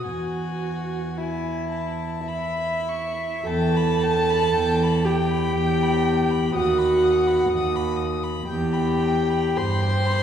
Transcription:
0.06 cello E2, violin F#4 G#5, viola F#4
1.16 viola E4, violin E4 G#5
1.71 violin A5
2.26 viola E4, violin E5 B5
2.88 violin C#6
3.46 cello E2, viola A4, violin G5 A5
3.77 violin B5
4.03 violin G5
4.30 violin B5
4.53 cello E2, violin G5
4.83 violin B5
5.04 viola G4, violin G5
5.31 violin B5
5.55 cello E2, violin G5
5.82 violin B5
6.08 violin G5
6.31 violin B5
6.55 cello D#2, viola F#4, violin F#5 D#6
6.78 violin B5
7.03 violin D#6
7.27 violin B5
7.51 cello D#2, violin D#6
7.76 violin B5
7.96 violin D#6
8.23 violin B5
8.48 cello E2, viola G4, violin G5
8.73 violin B5
9.03 violin G5
9.30 violin B5
9.55 cello G2, viola C5, violin B5 C6
9.82 violin G5
10.06 violin B5

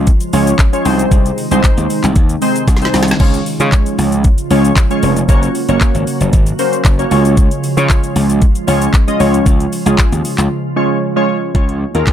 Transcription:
Already playing: ambient pad C#3 F3 G#3 F4
0.07 kick, closed hi-hat, shaker
0.21 closed hi-hat, shaker
0.33 slap bass C#2, synth keys G#3 C#4 F4 C#5, open hi-hat, shaker
0.47 closed hi-hat, shaker
0.59 kick, clap, closed hi-hat, shaker
0.73 synth keys G#3 C#4 F4 C#5, closed hi-hat, shaker
0.85 slap bass C2, ambient pad C3 D#3 D#4, synth keys G#3 C4 D#4 C5, open hi-hat, shaker
0.99 closed hi-hat, shaker
1.11 slap bass C2, kick, closed hi-hat, shaker
1.26 closed hi-hat, shaker
1.38 open hi-hat, shaker
1.51 slap bass C2, synth keys G#3 C4 D#4 C5, closed hi-hat, shaker
1.64 kick, clap, closed hi-hat, shaker
1.77 slap bass D#2, closed hi-hat, shaker
1.90 open hi-hat, shaker
2.04 slap bass C2, clap, closed hi-hat, shaker
2.16 slap bass D#2, kick, closed hi-hat, shaker
2.29 closed hi-hat, shaker
2.42 synth keys G#3 C4 D#4 C5, open hi-hat, shaker
2.56 closed hi-hat, shaker
2.68 slap bass C2, kick, snare, closed hi-hat, shaker
2.77 snare
2.82 synth keys G#3 C4 D#4 C5, snare, closed hi-hat, shaker
2.94 slap bass C2, snare, open hi-hat, shaker
3.03 snare
3.08 snare, closed hi-hat, shaker
3.20 slap bass C#2, ambient pad C#3 F3 F4, synth keys G#3 C#4 F4 C#5, kick, crash
3.34 closed hi-hat, shaker
3.46 open hi-hat, shaker
3.60 slap bass C#3, synth keys G#3 C#4 F4 C#5, closed hi-hat, shaker
3.72 kick, clap, closed hi-hat, shaker
3.86 closed hi-hat, shaker
3.98 slap bass C#2, open hi-hat, shaker
4.12 closed hi-hat, shaker
4.24 kick, closed hi-hat, shaker
4.38 closed hi-hat, shaker
4.51 slap bass C#2, synth keys G#3 C#4 F4 C#5, open hi-hat, shaker
4.65 closed hi-hat, shaker
4.76 kick, clap, closed hi-hat, shaker
4.90 synth keys G#3 C#4 F4 C#5, closed hi-hat, shaker
5.03 slap bass F1, open hi-hat, shaker
5.17 closed hi-hat, shaker
5.29 slap bass F#1, ambient pad C#3 F#3 A#3 F#4, synth keys A#3 C#4 F#4 C#5, kick, closed hi-hat, shaker
5.43 closed hi-hat, shaker
5.55 open hi-hat, shaker
5.69 slap bass F#1, synth keys A#3 C#4 F#4 C#5, closed hi-hat, shaker
5.81 kick, clap, closed hi-hat, shaker
5.95 slap bass G#1, closed hi-hat, shaker
6.07 open hi-hat, shaker
6.21 slap bass F#1, closed hi-hat, shaker
6.33 slap bass G#1, kick, closed hi-hat, shaker
6.47 closed hi-hat, shaker
6.59 synth keys A#3 C#4 F#4 C5, open hi-hat, shaker
6.73 closed hi-hat, shaker
6.85 slap bass F#1, kick, clap, closed hi-hat, shaker
6.99 synth keys A#3 C#4 F#4 C#5, closed hi-hat, shaker
7.11 slap bass C#2, ambient pad F3 G#3 F4, synth keys G#3 C#4 F4 C#5, open hi-hat, shaker
7.25 closed hi-hat, shaker
7.37 kick, closed hi-hat, shaker
7.51 closed hi-hat, shaker
7.64 open hi-hat, shaker
7.77 slap bass C#3, synth keys G#3 C#4 F4 C#5, closed hi-hat, shaker
7.90 kick, clap, closed hi-hat, shaker
8.04 closed hi-hat, shaker
8.16 slap bass C#2, open hi-hat, shaker
8.30 closed hi-hat, shaker
8.42 kick, closed hi-hat, shaker
8.55 closed hi-hat, shaker
8.67 slap bass C#2, synth keys G#3 C#4 F4 C#5, open hi-hat, shaker
8.82 closed hi-hat, shaker
8.94 kick, clap, closed hi-hat, shaker
9.08 synth keys G#3 C#4 F4 D#5, closed hi-hat, shaker
9.20 slap bass C#2, ambient pad C#3 F4, synth keys G#3 C#4 F4 C#5, open hi-hat, shaker
9.34 closed hi-hat, shaker
9.46 slap bass C#2, kick, closed hi-hat, shaker
9.60 closed hi-hat, shaker
9.73 open hi-hat, shaker
9.86 slap bass C#2, synth keys G#3 C#4 F4 G#4, closed hi-hat, shaker
9.98 kick, clap, closed hi-hat, shaker
10.12 slap bass D#2, closed hi-hat, shaker
10.25 open hi-hat, shaker
10.38 slap bass C#2, clap, closed hi-hat, shaker
10.76 synth keys G#3 C#4 F4 C#5
11.16 synth keys G#3 C#4 F4 C#5
11.55 slap bass C#2, synth keys G#3 F4 C#5, kick, closed hi-hat
11.69 closed hi-hat
11.95 slap bass D#2, synth keys G#3 F4 A#4, closed hi-hat
12.07 slap bass C#2, kick, clap, closed hi-hat

